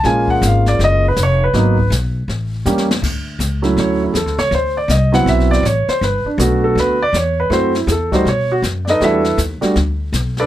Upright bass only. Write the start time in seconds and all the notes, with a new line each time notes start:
0.04 A#1
0.42 G#1
0.79 F#1
1.17 F1
1.53 G#1
1.90 B1
2.28 A1
2.65 E2
3.02 D2
3.39 C#2
3.77 D2
4.14 E2
4.26 D2
4.38 C#2
4.51 D2
4.88 C2
5.26 B1
5.63 A1
5.88 muted upright bass stroke
6.01 G1
6.25 muted upright bass stroke
6.38 B1
6.75 D2
7.13 E2
7.50 F#2
7.87 E2
8.25 B2
8.62 F#2
9.00 E2
9.38 D#2
9.62 muted upright bass stroke
9.76 D2
10.13 B1